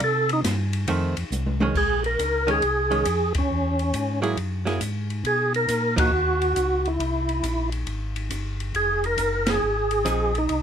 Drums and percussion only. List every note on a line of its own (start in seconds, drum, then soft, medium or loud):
0.00 kick soft
0.00 ride medium
0.29 ride medium
0.44 kick soft
0.44 snare medium
0.44 hi-hat pedal medium
0.44 ride medium
0.73 ride medium
0.88 kick soft
0.88 ride medium
1.17 ride medium
1.32 hi-hat pedal medium
1.32 high tom medium
1.46 high tom medium
1.60 high tom medium
1.75 kick medium
1.75 crash medium
2.04 ride soft
2.19 kick soft
2.19 hi-hat pedal soft
2.19 ride medium
2.48 ride soft
2.62 kick soft
2.62 ride medium
2.91 ride soft
3.05 kick soft
3.05 hi-hat pedal medium
3.05 ride medium
3.34 kick medium
3.34 ride medium
3.79 ride soft
3.93 kick soft
3.93 hi-hat pedal medium
3.93 ride medium
4.23 ride soft
4.37 kick soft
4.37 ride medium
4.67 snare soft
4.67 ride soft
4.81 kick soft
4.81 hi-hat pedal medium
4.81 ride medium
5.10 ride soft
5.24 kick soft
5.24 ride medium
5.54 ride soft
5.68 kick soft
5.68 hi-hat pedal medium
5.68 ride medium
5.98 kick medium
5.98 ride medium
6.41 ride soft
6.56 kick soft
6.56 hi-hat pedal medium
6.56 ride medium
6.85 ride soft
7.00 kick soft
7.00 ride medium
7.29 ride soft
7.43 kick soft
7.43 hi-hat pedal soft
7.43 ride medium
7.72 ride soft
7.87 kick soft
7.87 ride medium
8.16 ride soft
8.30 kick soft
8.30 hi-hat pedal medium
8.30 ride medium
8.60 ride soft
8.74 kick soft
8.74 ride medium
9.04 ride soft
9.18 kick soft
9.18 hi-hat pedal medium
9.18 ride medium
9.46 snare medium
9.46 ride medium
9.91 ride soft
10.05 kick soft
10.05 hi-hat pedal medium
10.05 ride medium
10.35 ride soft
10.49 kick soft
10.49 ride medium